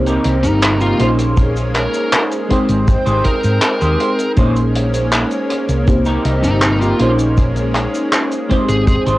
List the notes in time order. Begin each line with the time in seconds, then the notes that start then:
Already playing: C2 C3 G3 A#3 C4 D#4 G4 C5
0.06 C4 D#4 G4 A#4, closed hi-hat, cabasa
0.24 C2, closed hi-hat
0.43 G1 D#4, closed hi-hat, cabasa
0.62 muted clean electric guitar stroke, clap, closed hi-hat, cabasa
0.81 C4 D#4 F4 G4 A#4, closed hi-hat, cabasa
0.99 A#1 G#3 A#3 C#4 D#4 G#4 C5, closed hi-hat
1.19 closed hi-hat, cabasa
1.37 kick, closed hi-hat, cabasa
1.56 closed hi-hat, cabasa
1.75 A#4, clap, closed hi-hat
1.94 closed hi-hat, cabasa
2.13 clap, closed hi-hat, cabasa
2.32 closed hi-hat, cabasa
2.49 G#3 C4 D#4 G4 G#4 C5 G5, kick, closed hi-hat
2.69 G#1, closed hi-hat, cabasa
2.88 kick, closed hi-hat, cabasa
3.06 G#1 D#4 G4 G#4 C5, closed hi-hat, cabasa
3.25 A#4, kick, closed hi-hat
3.43 G#2, closed hi-hat, cabasa
3.62 muted clean electric guitar stroke, clap, closed hi-hat, cabasa
3.81 D#2 D#4 G4 G#4 C5, closed hi-hat, cabasa
4.00 closed hi-hat
4.19 closed hi-hat, cabasa
4.36 A#1 A#3 C#4 D#4 G#4 C5, kick, closed hi-hat, cabasa
4.56 closed hi-hat, cabasa
4.75 muted clean electric guitar stroke, closed hi-hat
4.94 closed hi-hat, cabasa
5.12 clap, closed hi-hat, cabasa
5.31 closed hi-hat, cabasa
5.50 muted clean electric guitar stroke, closed hi-hat
5.69 C2, muted clean electric guitar stroke, closed hi-hat, cabasa
5.86 C3 G3 A#3 C4 D#4 G4 C5, muted clean electric guitar stroke, kick, closed hi-hat, cabasa
6.05 C4 D#4 G4 A#4, closed hi-hat, cabasa
6.25 C2, closed hi-hat
6.44 G1 D#4, closed hi-hat, cabasa
6.62 muted clean electric guitar stroke, clap, closed hi-hat, cabasa
6.81 C4 D#4 F4 G4 A#4, closed hi-hat, cabasa
6.99 A#1 G#3 A#3 C#4 D#4 G#4 C5, closed hi-hat
7.19 closed hi-hat, cabasa
7.37 kick, closed hi-hat, cabasa
7.56 closed hi-hat, cabasa
7.75 muted clean electric guitar stroke, clap, closed hi-hat
7.94 closed hi-hat, cabasa
8.13 clap, closed hi-hat, cabasa
8.32 closed hi-hat, cabasa
8.49 G#3 C4 D#4 G4 G#4 C5, kick, closed hi-hat
8.68 G#1 G#4, closed hi-hat, cabasa
8.87 G#4, kick, closed hi-hat, cabasa
9.06 G#1 D#4 G4 G#4 C5, closed hi-hat, cabasa